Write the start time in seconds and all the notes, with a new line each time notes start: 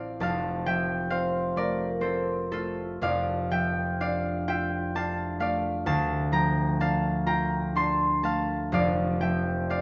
Already playing: A1 A2 A3 C4 F4 A4 C5 D5 E5 F5 A5
0.20 F1 F2 F5 A5
0.66 F3 E5 G5
1.10 C4 C5 F5
1.56 A3 A#4 D5
2.01 C4 A4 C5
2.51 A3 F4 A4
3.01 F1 F2 D5 F5
3.51 F3 E5 G5
4.00 D4 D5 F5
4.48 F4 E5 G5
4.95 D4 F5 A5
5.40 A3 D5 F5
5.86 D2 F5 A5
6.32 F3 G5 A#5
6.80 D4 F5 A5
7.26 F4 G5 A#5
7.75 D4 A5 C6
8.23 A3 F5 A5
8.72 F1 F2 D5 F5
9.20 F3 E5 G5
9.70 D4 D5 F5